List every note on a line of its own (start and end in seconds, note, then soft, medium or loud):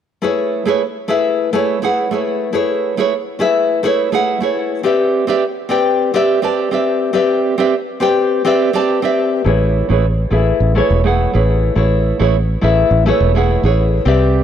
0.22 0.63 A3 medium
0.22 0.63 E4 medium
0.22 0.63 G#4 medium
0.22 0.63 B4 medium
0.22 0.64 C#5 medium
0.65 0.81 A3 medium
0.65 0.81 E4 medium
0.65 0.81 G#4 medium
0.65 0.82 B4 medium
0.65 0.82 C#5 medium
1.08 1.49 A3 medium
1.08 1.49 E4 medium
1.08 1.50 G#4 medium
1.08 1.50 B4 medium
1.08 1.50 E5 medium
1.53 1.77 A3 medium
1.53 1.77 E4 medium
1.53 1.78 G#4 medium
1.53 1.78 B4 medium
1.53 1.78 C#5 medium
1.82 2.07 A3 medium
1.82 2.07 E4 medium
1.82 2.08 G#4 medium
1.82 2.08 B4 medium
1.82 2.08 F#5 medium
2.11 2.50 A3 medium
2.11 2.50 E4 medium
2.11 2.50 G#4 medium
2.11 2.51 B4 medium
2.11 2.51 C#5 medium
2.53 2.93 A3 medium
2.53 2.94 E4 medium
2.53 2.94 G#4 medium
2.53 2.94 B4 medium
2.53 2.95 C#5 medium
2.97 3.12 A3 medium
2.97 3.12 E4 medium
2.97 3.13 G#4 medium
2.97 3.13 B4 medium
2.97 3.13 C#5 medium
3.39 3.80 A3 medium
3.39 3.80 E4 medium
3.39 3.80 G#4 medium
3.39 3.81 B4 medium
3.39 3.81 E5 medium
3.83 4.08 A3 medium
3.83 4.08 E4 medium
3.83 4.08 G#4 medium
3.83 4.09 B4 medium
3.83 4.09 C#5 loud
4.12 4.37 A3 medium
4.12 4.38 E4 medium
4.12 4.38 G#4 medium
4.12 4.38 B4 medium
4.12 4.39 F#5 medium
4.40 4.80 A3 medium
4.40 4.80 E4 medium
4.40 4.81 G#4 medium
4.40 4.81 B4 medium
4.40 4.81 C#5 medium
4.83 5.24 C4 medium
4.83 5.25 G4 medium
4.83 5.25 B4 medium
4.83 5.25 D5 medium
4.83 5.25 E5 medium
5.27 5.42 C4 medium
5.27 5.43 G4 medium
5.27 5.43 B4 medium
5.27 5.43 D5 medium
5.27 5.44 E5 medium
5.69 6.10 C4 medium
5.69 6.11 G4 medium
5.69 6.11 B4 medium
5.69 6.11 D5 medium
5.69 6.11 G5 medium
6.14 6.38 C4 medium
6.14 6.39 G4 medium
6.14 6.39 B4 medium
6.14 6.39 D5 medium
6.14 6.39 E5 loud
6.42 6.68 C4 medium
6.42 6.68 G4 medium
6.42 6.68 B4 medium
6.42 6.69 D5 medium
6.42 6.69 A5 medium
6.71 7.11 C4 medium
6.71 7.11 G4 medium
6.71 7.11 B4 medium
6.71 7.12 D5 medium
6.71 7.12 E5 medium
7.13 7.54 C4 medium
7.13 7.55 G4 medium
7.13 7.55 B4 medium
7.13 7.55 D5 medium
7.13 7.55 E5 medium
7.58 7.73 C4 medium
7.58 7.73 G4 medium
7.58 7.74 B4 medium
7.58 7.74 D5 medium
7.58 7.74 E5 medium
8.00 8.41 C4 medium
8.00 8.42 G4 medium
8.00 8.42 B4 medium
8.00 8.42 D5 medium
8.00 8.42 G5 medium
8.45 8.69 C4 medium
8.45 8.69 G4 medium
8.45 8.70 B4 medium
8.45 8.70 D5 medium
8.45 8.70 E5 loud
8.73 8.99 C4 medium
8.73 8.99 G4 medium
8.73 8.99 B4 medium
8.73 9.00 D5 medium
8.73 9.00 A5 loud
9.02 9.42 C4 medium
9.02 9.42 G4 medium
9.02 9.42 B4 medium
9.02 9.42 D5 medium
9.02 9.43 E5 medium
9.44 9.82 A1 medium
9.44 9.86 A3 medium
9.44 9.86 E4 medium
9.44 9.86 G#4 medium
9.44 9.86 B4 medium
9.44 9.87 C#5 medium
9.89 10.25 A1 medium
9.89 10.04 A3 medium
9.89 10.04 E4 medium
9.89 10.05 G#4 medium
9.89 10.05 B4 medium
9.89 10.05 C#5 medium
10.30 10.51 A1 medium
10.30 10.72 A3 medium
10.30 10.72 E4 medium
10.30 10.73 G#4 medium
10.30 10.73 B4 medium
10.30 10.73 E5 loud
10.60 10.80 A1 medium
10.75 11.00 A3 medium
10.75 11.00 E4 medium
10.75 11.00 G#4 medium
10.75 11.01 B4 medium
10.75 11.01 C#5 loud
10.90 11.26 E1 medium
11.04 11.29 A3 medium
11.04 11.30 E4 medium
11.04 11.30 G#4 medium
11.04 11.31 B4 medium
11.04 11.31 F#5 medium
11.33 11.69 A1 medium
11.33 11.72 A3 medium
11.33 11.73 E4 medium
11.33 11.73 G#4 medium
11.33 11.73 B4 medium
11.33 11.74 C#5 medium
11.75 12.12 A1 medium
11.75 12.16 A3 medium
11.75 12.17 E4 medium
11.75 12.17 G#4 medium
11.75 12.17 B4 medium
11.75 12.18 C#5 medium
12.19 12.55 A1 medium
12.19 12.35 A3 medium
12.19 12.35 E4 medium
12.19 12.35 G#4 medium
12.19 12.35 B4 medium
12.19 12.36 C#5 medium
12.61 12.83 A1 medium
12.61 13.03 A3 medium
12.61 13.03 E4 medium
12.61 13.03 G#4 medium
12.61 13.03 B4 medium
12.61 13.04 E5 medium
12.91 13.11 A1 medium
13.06 13.30 A3 medium
13.06 13.31 E4 medium
13.06 13.31 G#4 medium
13.06 13.31 B4 medium
13.06 13.32 C#5 loud
13.20 13.56 E1 medium
13.35 13.60 A3 medium
13.35 13.61 E4 medium
13.35 13.61 G#4 medium
13.35 13.61 B4 medium
13.35 13.61 F#5 medium
13.63 13.99 A1 medium
13.63 14.03 A3 medium
13.63 14.03 E4 medium
13.63 14.04 G#4 medium
13.63 14.04 B4 medium
13.63 14.04 C#5 medium
14.05 14.42 C2 medium
14.05 14.44 C4 medium
14.05 14.44 G4 medium
14.05 14.44 B4 medium
14.05 14.44 D5 medium
14.05 14.44 E5 medium